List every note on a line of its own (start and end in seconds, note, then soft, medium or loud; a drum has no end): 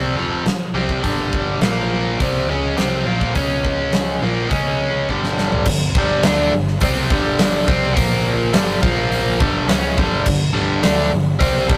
0.00 0.14 C2 medium
0.00 0.15 C3 medium
0.00 0.15 G3 medium
0.00 0.15 C4 medium
0.14 0.42 F1 medium
0.14 0.44 F2 medium
0.14 0.44 C3 medium
0.14 0.45 F3 medium
0.45 muted picked electric bass stroke soft
0.45 muted overdriven electric guitar stroke medium
0.45 snare medium
0.45 open hi-hat soft
0.73 1.01 C2 medium
0.73 1.02 C3 medium
0.73 1.02 G3 medium
0.73 1.03 C4 medium
0.89 kick medium
1.03 1.58 G1 medium
1.03 1.60 G2 medium
1.03 1.60 D3 medium
1.03 1.60 G3 medium
1.03 kick medium
1.03 open hi-hat soft
1.33 kick medium
1.61 2.15 A#1 medium
1.61 2.19 A#2 medium
1.61 2.19 F3 medium
1.61 2.19 A#3 medium
1.61 snare loud
1.61 open hi-hat soft
2.20 2.46 C2 medium
2.20 2.48 C3 medium
2.20 2.48 G3 medium
2.20 2.48 C4 medium
2.20 kick loud
2.20 open hi-hat soft
2.48 2.75 C#2 medium
2.48 2.76 C#3 medium
2.48 2.77 G#3 medium
2.48 2.77 C#4 medium
2.76 3.04 C2 medium
2.76 3.05 C3 medium
2.76 3.05 G3 medium
2.76 3.06 C4 loud
2.76 snare medium
2.76 open hi-hat soft
3.06 3.33 A#1 medium
3.06 3.34 A#2 medium
3.06 3.34 F3 medium
3.06 3.35 A#3 medium
3.21 kick medium
3.35 4.18 C#2 medium
3.35 4.21 C#3 medium
3.35 4.21 G#3 medium
3.35 4.21 C#4 medium
3.35 kick medium
3.35 open hi-hat soft
3.65 kick medium
3.93 snare loud
3.93 open hi-hat medium
4.22 4.49 A#1 medium
4.22 4.48 A#2 medium
4.22 4.49 F3 medium
4.22 4.49 A#3 medium
4.48 5.05 C#2 medium
4.48 5.06 C#3 medium
4.48 5.07 G#3 medium
4.48 5.07 C#4 medium
4.48 kick loud
4.48 open hi-hat soft
5.09 5.62 G1 medium
5.09 5.65 G2 medium
5.09 5.65 D3 medium
5.09 5.66 G3 medium
5.09 kick soft
5.24 snare medium
5.38 snare medium
5.52 floor tom medium
5.65 5.93 G1 medium
5.65 5.89 G2 medium
5.65 5.90 D3 medium
5.65 kick medium
5.65 crash loud
5.95 6.22 G1 medium
5.95 6.24 G2 medium
5.95 6.23 D3 medium
5.95 6.24 G3 loud
5.95 kick loud
6.23 6.50 D2 medium
6.23 6.52 D3 medium
6.23 6.52 A3 medium
6.23 6.53 D4 loud
6.23 snare loud
6.23 open hi-hat medium
6.51 6.79 G1 medium
6.51 6.76 G2 medium
6.51 6.76 D3 medium
6.67 snare soft
6.80 7.08 C2 medium
6.80 7.09 C3 medium
6.80 7.09 G3 loud
6.80 7.10 C4 loud
6.80 kick loud
6.80 open hi-hat medium
7.10 7.64 G1 loud
7.10 7.67 G2 medium
7.10 7.67 D3 medium
7.10 7.66 G3 loud
7.10 kick loud
7.39 snare loud
7.39 open hi-hat medium
7.67 7.95 C2 loud
7.67 7.96 C3 medium
7.67 7.96 G3 medium
7.67 7.96 C4 loud
7.67 kick loud
7.96 8.50 A#1 medium
7.96 8.52 A#2 medium
7.96 8.53 F3 medium
7.96 8.53 A#3 medium
7.96 kick loud
7.96 open hi-hat medium
8.53 8.80 G1 medium
8.53 8.81 G2 medium
8.53 8.82 D3 loud
8.53 8.82 G3 loud
8.53 snare loud
8.53 open hi-hat medium
8.82 9.36 A#1 loud
8.82 9.39 A#2 medium
8.82 9.39 F3 loud
8.82 9.39 A#3 loud
8.82 kick loud
9.12 open hi-hat medium
9.40 9.67 G1 medium
9.40 9.68 G2 medium
9.40 9.67 D3 loud
9.40 9.67 G3 loud
9.40 kick loud
9.68 9.95 C#2 medium
9.68 9.96 C#3 medium
9.68 9.96 G#3 medium
9.68 9.96 C#4 loud
9.68 snare loud
9.68 open hi-hat medium
9.97 10.24 G1 loud
9.97 10.24 G2 medium
9.97 10.25 D3 medium
9.97 10.26 G3 loud
9.97 kick loud
10.26 10.53 G1 medium
10.26 10.49 G2 medium
10.26 10.49 D3 medium
10.26 kick medium
10.26 crash loud
10.53 10.82 G1 medium
10.53 10.81 G2 medium
10.53 10.81 D3 loud
10.53 10.82 G3 loud
10.82 11.10 D2 loud
10.82 11.10 D3 medium
10.82 11.11 A3 loud
10.82 11.11 D4 loud
10.82 snare loud
10.82 open hi-hat medium
11.11 11.39 G1 medium
11.11 11.34 G2 medium
11.11 11.35 D3 medium
11.39 11.67 C2 medium
11.39 11.68 C3 medium
11.39 11.68 G3 loud
11.39 11.68 C4 loud
11.39 kick loud
11.39 open hi-hat medium
11.68 11.77 G1 medium
11.68 11.77 G2 medium
11.68 11.77 D3 loud
11.68 11.77 G3 loud
11.68 kick loud